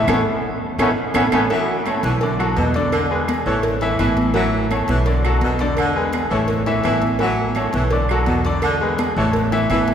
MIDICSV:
0, 0, Header, 1, 6, 480
1, 0, Start_track
1, 0, Key_signature, 3, "major"
1, 0, Tempo, 356506
1, 106, Time_signature, 4, 2, 24, 8
1, 13387, End_track
2, 0, Start_track
2, 0, Title_t, "Grand piano"
2, 0, Program_c, 0, 0
2, 113, Note_on_c, 0, 61, 93
2, 115, Note_on_c, 0, 64, 94
2, 116, Note_on_c, 0, 69, 99
2, 264, Note_off_c, 0, 61, 0
2, 265, Note_off_c, 0, 64, 0
2, 265, Note_off_c, 0, 69, 0
2, 1065, Note_on_c, 0, 61, 96
2, 1065, Note_on_c, 0, 64, 87
2, 1067, Note_on_c, 0, 69, 92
2, 1218, Note_off_c, 0, 61, 0
2, 1218, Note_off_c, 0, 64, 0
2, 1219, Note_off_c, 0, 69, 0
2, 1541, Note_on_c, 0, 69, 93
2, 1542, Note_on_c, 0, 64, 89
2, 1543, Note_on_c, 0, 61, 96
2, 1695, Note_off_c, 0, 69, 0
2, 1696, Note_off_c, 0, 61, 0
2, 1696, Note_off_c, 0, 64, 0
2, 1778, Note_on_c, 0, 69, 91
2, 1782, Note_on_c, 0, 64, 91
2, 1784, Note_on_c, 0, 61, 96
2, 1933, Note_off_c, 0, 69, 0
2, 1936, Note_off_c, 0, 64, 0
2, 1937, Note_off_c, 0, 61, 0
2, 2025, Note_on_c, 0, 52, 80
2, 2025, Note_on_c, 0, 64, 84
2, 2031, Note_on_c, 0, 76, 80
2, 2417, Note_off_c, 0, 52, 0
2, 2417, Note_off_c, 0, 64, 0
2, 2420, Note_off_c, 0, 76, 0
2, 2515, Note_on_c, 0, 57, 76
2, 2516, Note_on_c, 0, 69, 77
2, 2526, Note_on_c, 0, 73, 74
2, 2903, Note_off_c, 0, 57, 0
2, 2903, Note_off_c, 0, 69, 0
2, 2909, Note_off_c, 0, 73, 0
2, 2992, Note_on_c, 0, 50, 78
2, 2999, Note_on_c, 0, 62, 77
2, 3002, Note_on_c, 0, 74, 87
2, 3184, Note_off_c, 0, 50, 0
2, 3188, Note_off_c, 0, 62, 0
2, 3190, Note_off_c, 0, 74, 0
2, 3219, Note_on_c, 0, 54, 82
2, 3230, Note_on_c, 0, 66, 77
2, 3230, Note_on_c, 0, 69, 78
2, 3613, Note_off_c, 0, 54, 0
2, 3619, Note_off_c, 0, 66, 0
2, 3619, Note_off_c, 0, 69, 0
2, 3708, Note_on_c, 0, 50, 92
2, 3711, Note_on_c, 0, 62, 88
2, 3713, Note_on_c, 0, 74, 88
2, 4098, Note_off_c, 0, 50, 0
2, 4100, Note_off_c, 0, 62, 0
2, 4101, Note_off_c, 0, 74, 0
2, 4184, Note_on_c, 0, 56, 80
2, 4188, Note_on_c, 0, 68, 82
2, 4189, Note_on_c, 0, 71, 77
2, 4575, Note_off_c, 0, 56, 0
2, 4578, Note_off_c, 0, 68, 0
2, 4578, Note_off_c, 0, 71, 0
2, 4663, Note_on_c, 0, 57, 74
2, 4666, Note_on_c, 0, 69, 79
2, 4669, Note_on_c, 0, 73, 83
2, 5055, Note_off_c, 0, 57, 0
2, 5057, Note_off_c, 0, 69, 0
2, 5059, Note_off_c, 0, 73, 0
2, 5141, Note_on_c, 0, 52, 85
2, 5145, Note_on_c, 0, 64, 89
2, 5151, Note_on_c, 0, 76, 93
2, 5337, Note_off_c, 0, 52, 0
2, 5339, Note_off_c, 0, 64, 0
2, 5343, Note_off_c, 0, 76, 0
2, 5384, Note_on_c, 0, 52, 89
2, 5384, Note_on_c, 0, 64, 84
2, 5390, Note_on_c, 0, 76, 80
2, 5775, Note_off_c, 0, 52, 0
2, 5775, Note_off_c, 0, 64, 0
2, 5779, Note_off_c, 0, 76, 0
2, 5861, Note_on_c, 0, 52, 81
2, 5865, Note_on_c, 0, 64, 84
2, 5871, Note_on_c, 0, 76, 84
2, 6254, Note_off_c, 0, 52, 0
2, 6256, Note_off_c, 0, 64, 0
2, 6260, Note_off_c, 0, 76, 0
2, 6348, Note_on_c, 0, 57, 71
2, 6348, Note_on_c, 0, 69, 72
2, 6354, Note_on_c, 0, 73, 79
2, 6738, Note_off_c, 0, 57, 0
2, 6738, Note_off_c, 0, 69, 0
2, 6742, Note_off_c, 0, 73, 0
2, 6825, Note_on_c, 0, 62, 75
2, 6826, Note_on_c, 0, 50, 80
2, 6830, Note_on_c, 0, 74, 79
2, 7020, Note_off_c, 0, 50, 0
2, 7020, Note_off_c, 0, 62, 0
2, 7023, Note_off_c, 0, 74, 0
2, 7072, Note_on_c, 0, 54, 80
2, 7074, Note_on_c, 0, 66, 76
2, 7077, Note_on_c, 0, 69, 84
2, 7460, Note_off_c, 0, 54, 0
2, 7462, Note_off_c, 0, 66, 0
2, 7464, Note_off_c, 0, 69, 0
2, 7548, Note_on_c, 0, 50, 98
2, 7552, Note_on_c, 0, 62, 88
2, 7557, Note_on_c, 0, 74, 92
2, 7939, Note_off_c, 0, 50, 0
2, 7941, Note_off_c, 0, 62, 0
2, 7943, Note_off_c, 0, 74, 0
2, 8024, Note_on_c, 0, 56, 80
2, 8025, Note_on_c, 0, 68, 83
2, 8031, Note_on_c, 0, 71, 79
2, 8416, Note_off_c, 0, 56, 0
2, 8417, Note_off_c, 0, 68, 0
2, 8420, Note_off_c, 0, 71, 0
2, 8501, Note_on_c, 0, 57, 77
2, 8504, Note_on_c, 0, 69, 77
2, 8509, Note_on_c, 0, 73, 79
2, 8894, Note_off_c, 0, 57, 0
2, 8896, Note_off_c, 0, 69, 0
2, 8900, Note_off_c, 0, 73, 0
2, 8978, Note_on_c, 0, 52, 88
2, 8978, Note_on_c, 0, 64, 88
2, 8982, Note_on_c, 0, 76, 87
2, 9176, Note_off_c, 0, 52, 0
2, 9176, Note_off_c, 0, 64, 0
2, 9178, Note_off_c, 0, 76, 0
2, 9220, Note_on_c, 0, 52, 84
2, 9220, Note_on_c, 0, 64, 89
2, 9228, Note_on_c, 0, 76, 78
2, 9615, Note_off_c, 0, 52, 0
2, 9615, Note_off_c, 0, 64, 0
2, 9619, Note_off_c, 0, 76, 0
2, 9696, Note_on_c, 0, 52, 79
2, 9698, Note_on_c, 0, 64, 78
2, 9704, Note_on_c, 0, 76, 80
2, 10093, Note_off_c, 0, 52, 0
2, 10094, Note_off_c, 0, 64, 0
2, 10097, Note_off_c, 0, 76, 0
2, 10185, Note_on_c, 0, 57, 72
2, 10188, Note_on_c, 0, 69, 73
2, 10193, Note_on_c, 0, 73, 76
2, 10578, Note_off_c, 0, 57, 0
2, 10580, Note_off_c, 0, 69, 0
2, 10583, Note_off_c, 0, 73, 0
2, 10665, Note_on_c, 0, 50, 79
2, 10670, Note_on_c, 0, 62, 81
2, 10673, Note_on_c, 0, 74, 81
2, 10861, Note_off_c, 0, 50, 0
2, 10864, Note_off_c, 0, 62, 0
2, 10866, Note_off_c, 0, 74, 0
2, 10916, Note_on_c, 0, 54, 80
2, 10918, Note_on_c, 0, 66, 78
2, 10919, Note_on_c, 0, 69, 81
2, 11305, Note_off_c, 0, 54, 0
2, 11306, Note_off_c, 0, 66, 0
2, 11307, Note_off_c, 0, 69, 0
2, 11382, Note_on_c, 0, 50, 92
2, 11387, Note_on_c, 0, 62, 84
2, 11392, Note_on_c, 0, 74, 97
2, 11777, Note_off_c, 0, 50, 0
2, 11780, Note_off_c, 0, 62, 0
2, 11783, Note_off_c, 0, 74, 0
2, 11864, Note_on_c, 0, 56, 81
2, 11869, Note_on_c, 0, 68, 79
2, 11878, Note_on_c, 0, 71, 80
2, 12258, Note_off_c, 0, 56, 0
2, 12262, Note_off_c, 0, 68, 0
2, 12267, Note_off_c, 0, 71, 0
2, 12351, Note_on_c, 0, 57, 81
2, 12355, Note_on_c, 0, 69, 79
2, 12357, Note_on_c, 0, 73, 77
2, 12743, Note_off_c, 0, 57, 0
2, 12745, Note_off_c, 0, 69, 0
2, 12746, Note_off_c, 0, 73, 0
2, 12820, Note_on_c, 0, 52, 93
2, 12831, Note_on_c, 0, 64, 91
2, 12832, Note_on_c, 0, 76, 94
2, 13019, Note_off_c, 0, 52, 0
2, 13026, Note_off_c, 0, 64, 0
2, 13026, Note_off_c, 0, 76, 0
2, 13062, Note_on_c, 0, 52, 83
2, 13066, Note_on_c, 0, 64, 86
2, 13074, Note_on_c, 0, 76, 85
2, 13387, Note_off_c, 0, 52, 0
2, 13387, Note_off_c, 0, 64, 0
2, 13387, Note_off_c, 0, 76, 0
2, 13387, End_track
3, 0, Start_track
3, 0, Title_t, "Trombone section"
3, 0, Program_c, 1, 61
3, 121, Note_on_c, 1, 59, 90
3, 124, Note_on_c, 1, 57, 97
3, 126, Note_on_c, 1, 61, 91
3, 232, Note_off_c, 1, 59, 0
3, 234, Note_off_c, 1, 57, 0
3, 235, Note_off_c, 1, 61, 0
3, 1084, Note_on_c, 1, 57, 101
3, 1084, Note_on_c, 1, 59, 102
3, 1084, Note_on_c, 1, 61, 98
3, 1193, Note_off_c, 1, 57, 0
3, 1193, Note_off_c, 1, 59, 0
3, 1193, Note_off_c, 1, 61, 0
3, 1562, Note_on_c, 1, 59, 95
3, 1566, Note_on_c, 1, 61, 94
3, 1569, Note_on_c, 1, 57, 96
3, 1671, Note_off_c, 1, 59, 0
3, 1674, Note_off_c, 1, 61, 0
3, 1676, Note_off_c, 1, 57, 0
3, 1792, Note_on_c, 1, 61, 102
3, 1796, Note_on_c, 1, 57, 104
3, 1798, Note_on_c, 1, 59, 100
3, 1904, Note_off_c, 1, 61, 0
3, 1907, Note_off_c, 1, 57, 0
3, 1908, Note_off_c, 1, 59, 0
3, 13387, End_track
4, 0, Start_track
4, 0, Title_t, "Saxophone section"
4, 0, Program_c, 2, 65
4, 2033, Note_on_c, 2, 54, 89
4, 2424, Note_off_c, 2, 54, 0
4, 2732, Note_on_c, 2, 52, 84
4, 3131, Note_off_c, 2, 52, 0
4, 3444, Note_on_c, 2, 47, 87
4, 3700, Note_off_c, 2, 47, 0
4, 3927, Note_on_c, 2, 50, 88
4, 4327, Note_off_c, 2, 50, 0
4, 4654, Note_on_c, 2, 52, 84
4, 5052, Note_off_c, 2, 52, 0
4, 5376, Note_on_c, 2, 52, 79
4, 5628, Note_off_c, 2, 52, 0
4, 5844, Note_on_c, 2, 54, 93
4, 6246, Note_off_c, 2, 54, 0
4, 6575, Note_on_c, 2, 52, 84
4, 6973, Note_off_c, 2, 52, 0
4, 7307, Note_on_c, 2, 47, 83
4, 7557, Note_off_c, 2, 47, 0
4, 7783, Note_on_c, 2, 50, 89
4, 8179, Note_off_c, 2, 50, 0
4, 8482, Note_on_c, 2, 52, 80
4, 8885, Note_off_c, 2, 52, 0
4, 9216, Note_on_c, 2, 52, 84
4, 9470, Note_off_c, 2, 52, 0
4, 9705, Note_on_c, 2, 54, 87
4, 10101, Note_off_c, 2, 54, 0
4, 10418, Note_on_c, 2, 52, 77
4, 10817, Note_off_c, 2, 52, 0
4, 11122, Note_on_c, 2, 47, 82
4, 11380, Note_off_c, 2, 47, 0
4, 11622, Note_on_c, 2, 50, 94
4, 12020, Note_off_c, 2, 50, 0
4, 12356, Note_on_c, 2, 52, 85
4, 12749, Note_off_c, 2, 52, 0
4, 13078, Note_on_c, 2, 52, 87
4, 13327, Note_off_c, 2, 52, 0
4, 13387, End_track
5, 0, Start_track
5, 0, Title_t, "Upright bass"
5, 0, Program_c, 3, 32
5, 100, Note_on_c, 3, 33, 102
5, 281, Note_off_c, 3, 33, 0
5, 1055, Note_on_c, 3, 33, 96
5, 1238, Note_off_c, 3, 33, 0
5, 1536, Note_on_c, 3, 33, 90
5, 1718, Note_off_c, 3, 33, 0
5, 1782, Note_on_c, 3, 33, 91
5, 1961, Note_off_c, 3, 33, 0
5, 2737, Note_on_c, 3, 35, 98
5, 3407, Note_off_c, 3, 35, 0
5, 3458, Note_on_c, 3, 40, 96
5, 4580, Note_off_c, 3, 40, 0
5, 4656, Note_on_c, 3, 33, 97
5, 5327, Note_off_c, 3, 33, 0
5, 5377, Note_on_c, 3, 33, 94
5, 6500, Note_off_c, 3, 33, 0
5, 6578, Note_on_c, 3, 35, 100
5, 7248, Note_off_c, 3, 35, 0
5, 7289, Note_on_c, 3, 40, 92
5, 8417, Note_off_c, 3, 40, 0
5, 8499, Note_on_c, 3, 33, 101
5, 9170, Note_off_c, 3, 33, 0
5, 9220, Note_on_c, 3, 33, 90
5, 10344, Note_off_c, 3, 33, 0
5, 10421, Note_on_c, 3, 35, 92
5, 11092, Note_off_c, 3, 35, 0
5, 11138, Note_on_c, 3, 40, 84
5, 12265, Note_off_c, 3, 40, 0
5, 12339, Note_on_c, 3, 33, 103
5, 13013, Note_off_c, 3, 33, 0
5, 13057, Note_on_c, 3, 33, 92
5, 13387, Note_off_c, 3, 33, 0
5, 13387, End_track
6, 0, Start_track
6, 0, Title_t, "Drums"
6, 102, Note_on_c, 9, 63, 99
6, 106, Note_on_c, 9, 75, 108
6, 109, Note_on_c, 9, 65, 97
6, 113, Note_on_c, 9, 56, 104
6, 237, Note_off_c, 9, 63, 0
6, 241, Note_off_c, 9, 75, 0
6, 244, Note_off_c, 9, 65, 0
6, 248, Note_off_c, 9, 56, 0
6, 1065, Note_on_c, 9, 65, 109
6, 1069, Note_on_c, 9, 75, 101
6, 1070, Note_on_c, 9, 63, 107
6, 1072, Note_on_c, 9, 56, 105
6, 1199, Note_off_c, 9, 65, 0
6, 1204, Note_off_c, 9, 63, 0
6, 1204, Note_off_c, 9, 75, 0
6, 1207, Note_off_c, 9, 56, 0
6, 1537, Note_on_c, 9, 56, 101
6, 1538, Note_on_c, 9, 63, 96
6, 1545, Note_on_c, 9, 75, 108
6, 1556, Note_on_c, 9, 65, 111
6, 1672, Note_off_c, 9, 56, 0
6, 1672, Note_off_c, 9, 63, 0
6, 1680, Note_off_c, 9, 75, 0
6, 1690, Note_off_c, 9, 65, 0
6, 1778, Note_on_c, 9, 75, 105
6, 1779, Note_on_c, 9, 56, 103
6, 1782, Note_on_c, 9, 63, 109
6, 1796, Note_on_c, 9, 65, 99
6, 1913, Note_off_c, 9, 75, 0
6, 1914, Note_off_c, 9, 56, 0
6, 1916, Note_off_c, 9, 63, 0
6, 1930, Note_off_c, 9, 65, 0
6, 2023, Note_on_c, 9, 56, 113
6, 2027, Note_on_c, 9, 63, 37
6, 2034, Note_on_c, 9, 68, 90
6, 2157, Note_off_c, 9, 56, 0
6, 2162, Note_off_c, 9, 63, 0
6, 2168, Note_off_c, 9, 68, 0
6, 2266, Note_on_c, 9, 63, 38
6, 2400, Note_off_c, 9, 63, 0
6, 2499, Note_on_c, 9, 56, 67
6, 2509, Note_on_c, 9, 63, 63
6, 2510, Note_on_c, 9, 75, 69
6, 2518, Note_on_c, 9, 68, 109
6, 2634, Note_off_c, 9, 56, 0
6, 2644, Note_off_c, 9, 63, 0
6, 2645, Note_off_c, 9, 75, 0
6, 2652, Note_off_c, 9, 68, 0
6, 2735, Note_on_c, 9, 56, 71
6, 2749, Note_on_c, 9, 63, 101
6, 2870, Note_off_c, 9, 56, 0
6, 2883, Note_off_c, 9, 63, 0
6, 2975, Note_on_c, 9, 56, 109
6, 2995, Note_on_c, 9, 68, 83
6, 2998, Note_on_c, 9, 63, 37
6, 3110, Note_off_c, 9, 56, 0
6, 3130, Note_off_c, 9, 68, 0
6, 3132, Note_off_c, 9, 63, 0
6, 3230, Note_on_c, 9, 75, 76
6, 3234, Note_on_c, 9, 68, 113
6, 3242, Note_on_c, 9, 63, 32
6, 3364, Note_off_c, 9, 75, 0
6, 3369, Note_off_c, 9, 68, 0
6, 3376, Note_off_c, 9, 63, 0
6, 3454, Note_on_c, 9, 56, 70
6, 3474, Note_on_c, 9, 63, 83
6, 3478, Note_on_c, 9, 66, 78
6, 3589, Note_off_c, 9, 56, 0
6, 3609, Note_off_c, 9, 63, 0
6, 3612, Note_off_c, 9, 66, 0
6, 3692, Note_on_c, 9, 56, 74
6, 3714, Note_on_c, 9, 68, 72
6, 3724, Note_on_c, 9, 63, 77
6, 3827, Note_off_c, 9, 56, 0
6, 3848, Note_off_c, 9, 68, 0
6, 3859, Note_off_c, 9, 63, 0
6, 3937, Note_on_c, 9, 56, 110
6, 3945, Note_on_c, 9, 75, 78
6, 3953, Note_on_c, 9, 68, 113
6, 4072, Note_off_c, 9, 56, 0
6, 4080, Note_off_c, 9, 75, 0
6, 4088, Note_off_c, 9, 68, 0
6, 4195, Note_on_c, 9, 63, 37
6, 4330, Note_off_c, 9, 63, 0
6, 4419, Note_on_c, 9, 75, 70
6, 4424, Note_on_c, 9, 56, 68
6, 4427, Note_on_c, 9, 63, 100
6, 4427, Note_on_c, 9, 68, 102
6, 4554, Note_off_c, 9, 75, 0
6, 4559, Note_off_c, 9, 56, 0
6, 4562, Note_off_c, 9, 63, 0
6, 4562, Note_off_c, 9, 68, 0
6, 4659, Note_on_c, 9, 63, 36
6, 4793, Note_off_c, 9, 63, 0
6, 4890, Note_on_c, 9, 56, 112
6, 4902, Note_on_c, 9, 63, 38
6, 4902, Note_on_c, 9, 68, 69
6, 5025, Note_off_c, 9, 56, 0
6, 5036, Note_off_c, 9, 63, 0
6, 5037, Note_off_c, 9, 68, 0
6, 5130, Note_on_c, 9, 56, 65
6, 5142, Note_on_c, 9, 63, 34
6, 5151, Note_on_c, 9, 68, 89
6, 5265, Note_off_c, 9, 56, 0
6, 5276, Note_off_c, 9, 63, 0
6, 5285, Note_off_c, 9, 68, 0
6, 5374, Note_on_c, 9, 75, 71
6, 5375, Note_on_c, 9, 56, 71
6, 5377, Note_on_c, 9, 63, 81
6, 5390, Note_on_c, 9, 68, 108
6, 5509, Note_off_c, 9, 56, 0
6, 5509, Note_off_c, 9, 75, 0
6, 5511, Note_off_c, 9, 63, 0
6, 5524, Note_off_c, 9, 68, 0
6, 5611, Note_on_c, 9, 56, 74
6, 5619, Note_on_c, 9, 63, 89
6, 5746, Note_off_c, 9, 56, 0
6, 5754, Note_off_c, 9, 63, 0
6, 5841, Note_on_c, 9, 56, 112
6, 5870, Note_on_c, 9, 68, 89
6, 5976, Note_off_c, 9, 56, 0
6, 6005, Note_off_c, 9, 68, 0
6, 6099, Note_on_c, 9, 63, 39
6, 6234, Note_off_c, 9, 63, 0
6, 6337, Note_on_c, 9, 56, 64
6, 6340, Note_on_c, 9, 63, 65
6, 6345, Note_on_c, 9, 68, 106
6, 6347, Note_on_c, 9, 75, 69
6, 6472, Note_off_c, 9, 56, 0
6, 6474, Note_off_c, 9, 63, 0
6, 6479, Note_off_c, 9, 68, 0
6, 6482, Note_off_c, 9, 75, 0
6, 6568, Note_on_c, 9, 56, 69
6, 6584, Note_on_c, 9, 63, 102
6, 6703, Note_off_c, 9, 56, 0
6, 6719, Note_off_c, 9, 63, 0
6, 6811, Note_on_c, 9, 56, 108
6, 6818, Note_on_c, 9, 63, 37
6, 6829, Note_on_c, 9, 68, 85
6, 6945, Note_off_c, 9, 56, 0
6, 6953, Note_off_c, 9, 63, 0
6, 6964, Note_off_c, 9, 68, 0
6, 7058, Note_on_c, 9, 63, 37
6, 7062, Note_on_c, 9, 75, 71
6, 7064, Note_on_c, 9, 68, 112
6, 7193, Note_off_c, 9, 63, 0
6, 7197, Note_off_c, 9, 75, 0
6, 7199, Note_off_c, 9, 68, 0
6, 7288, Note_on_c, 9, 56, 71
6, 7290, Note_on_c, 9, 63, 80
6, 7423, Note_off_c, 9, 56, 0
6, 7425, Note_off_c, 9, 63, 0
6, 7527, Note_on_c, 9, 56, 72
6, 7544, Note_on_c, 9, 68, 71
6, 7662, Note_off_c, 9, 56, 0
6, 7679, Note_off_c, 9, 68, 0
6, 7765, Note_on_c, 9, 56, 109
6, 7783, Note_on_c, 9, 75, 71
6, 7787, Note_on_c, 9, 63, 37
6, 7789, Note_on_c, 9, 68, 107
6, 7900, Note_off_c, 9, 56, 0
6, 7918, Note_off_c, 9, 75, 0
6, 7922, Note_off_c, 9, 63, 0
6, 7924, Note_off_c, 9, 68, 0
6, 8026, Note_on_c, 9, 63, 36
6, 8160, Note_off_c, 9, 63, 0
6, 8248, Note_on_c, 9, 56, 63
6, 8257, Note_on_c, 9, 63, 102
6, 8263, Note_on_c, 9, 75, 71
6, 8266, Note_on_c, 9, 68, 104
6, 8383, Note_off_c, 9, 56, 0
6, 8391, Note_off_c, 9, 63, 0
6, 8398, Note_off_c, 9, 75, 0
6, 8401, Note_off_c, 9, 68, 0
6, 8500, Note_on_c, 9, 63, 39
6, 8635, Note_off_c, 9, 63, 0
6, 8723, Note_on_c, 9, 56, 108
6, 8732, Note_on_c, 9, 63, 37
6, 8749, Note_on_c, 9, 68, 71
6, 8857, Note_off_c, 9, 56, 0
6, 8867, Note_off_c, 9, 63, 0
6, 8883, Note_off_c, 9, 68, 0
6, 8972, Note_on_c, 9, 56, 70
6, 8972, Note_on_c, 9, 63, 33
6, 8989, Note_on_c, 9, 68, 91
6, 9107, Note_off_c, 9, 56, 0
6, 9107, Note_off_c, 9, 63, 0
6, 9123, Note_off_c, 9, 68, 0
6, 9203, Note_on_c, 9, 56, 69
6, 9215, Note_on_c, 9, 63, 84
6, 9223, Note_on_c, 9, 75, 74
6, 9226, Note_on_c, 9, 66, 81
6, 9226, Note_on_c, 9, 68, 111
6, 9338, Note_off_c, 9, 56, 0
6, 9350, Note_off_c, 9, 63, 0
6, 9357, Note_off_c, 9, 75, 0
6, 9361, Note_off_c, 9, 66, 0
6, 9361, Note_off_c, 9, 68, 0
6, 9447, Note_on_c, 9, 56, 73
6, 9462, Note_on_c, 9, 63, 91
6, 9581, Note_off_c, 9, 56, 0
6, 9597, Note_off_c, 9, 63, 0
6, 9680, Note_on_c, 9, 56, 100
6, 9701, Note_on_c, 9, 63, 35
6, 9706, Note_on_c, 9, 68, 89
6, 9815, Note_off_c, 9, 56, 0
6, 9836, Note_off_c, 9, 63, 0
6, 9841, Note_off_c, 9, 68, 0
6, 9940, Note_on_c, 9, 63, 38
6, 10075, Note_off_c, 9, 63, 0
6, 10163, Note_on_c, 9, 56, 64
6, 10175, Note_on_c, 9, 75, 68
6, 10177, Note_on_c, 9, 63, 61
6, 10183, Note_on_c, 9, 68, 102
6, 10297, Note_off_c, 9, 56, 0
6, 10310, Note_off_c, 9, 75, 0
6, 10312, Note_off_c, 9, 63, 0
6, 10318, Note_off_c, 9, 68, 0
6, 10404, Note_on_c, 9, 56, 72
6, 10418, Note_on_c, 9, 63, 101
6, 10539, Note_off_c, 9, 56, 0
6, 10552, Note_off_c, 9, 63, 0
6, 10643, Note_on_c, 9, 56, 111
6, 10664, Note_on_c, 9, 63, 38
6, 10675, Note_on_c, 9, 68, 83
6, 10778, Note_off_c, 9, 56, 0
6, 10799, Note_off_c, 9, 63, 0
6, 10809, Note_off_c, 9, 68, 0
6, 10895, Note_on_c, 9, 75, 70
6, 10902, Note_on_c, 9, 63, 34
6, 10919, Note_on_c, 9, 68, 121
6, 11030, Note_off_c, 9, 75, 0
6, 11036, Note_off_c, 9, 63, 0
6, 11054, Note_off_c, 9, 68, 0
6, 11126, Note_on_c, 9, 56, 69
6, 11133, Note_on_c, 9, 63, 82
6, 11261, Note_off_c, 9, 56, 0
6, 11268, Note_off_c, 9, 63, 0
6, 11372, Note_on_c, 9, 56, 73
6, 11392, Note_on_c, 9, 68, 74
6, 11506, Note_off_c, 9, 56, 0
6, 11527, Note_off_c, 9, 68, 0
6, 11606, Note_on_c, 9, 56, 115
6, 11616, Note_on_c, 9, 63, 35
6, 11618, Note_on_c, 9, 75, 76
6, 11630, Note_on_c, 9, 68, 106
6, 11741, Note_off_c, 9, 56, 0
6, 11751, Note_off_c, 9, 63, 0
6, 11752, Note_off_c, 9, 75, 0
6, 11765, Note_off_c, 9, 68, 0
6, 11858, Note_on_c, 9, 63, 37
6, 11993, Note_off_c, 9, 63, 0
6, 12096, Note_on_c, 9, 56, 64
6, 12101, Note_on_c, 9, 63, 104
6, 12104, Note_on_c, 9, 75, 68
6, 12115, Note_on_c, 9, 68, 107
6, 12231, Note_off_c, 9, 56, 0
6, 12236, Note_off_c, 9, 63, 0
6, 12239, Note_off_c, 9, 75, 0
6, 12250, Note_off_c, 9, 68, 0
6, 12345, Note_on_c, 9, 63, 36
6, 12479, Note_off_c, 9, 63, 0
6, 12567, Note_on_c, 9, 56, 120
6, 12592, Note_on_c, 9, 63, 38
6, 12603, Note_on_c, 9, 68, 68
6, 12702, Note_off_c, 9, 56, 0
6, 12726, Note_off_c, 9, 63, 0
6, 12738, Note_off_c, 9, 68, 0
6, 12822, Note_on_c, 9, 56, 73
6, 12831, Note_on_c, 9, 63, 36
6, 12842, Note_on_c, 9, 68, 92
6, 12956, Note_off_c, 9, 56, 0
6, 12966, Note_off_c, 9, 63, 0
6, 12977, Note_off_c, 9, 68, 0
6, 13056, Note_on_c, 9, 56, 71
6, 13066, Note_on_c, 9, 75, 70
6, 13068, Note_on_c, 9, 63, 84
6, 13074, Note_on_c, 9, 68, 113
6, 13191, Note_off_c, 9, 56, 0
6, 13201, Note_off_c, 9, 75, 0
6, 13203, Note_off_c, 9, 63, 0
6, 13208, Note_off_c, 9, 68, 0
6, 13297, Note_on_c, 9, 56, 71
6, 13302, Note_on_c, 9, 63, 87
6, 13387, Note_off_c, 9, 56, 0
6, 13387, Note_off_c, 9, 63, 0
6, 13387, End_track
0, 0, End_of_file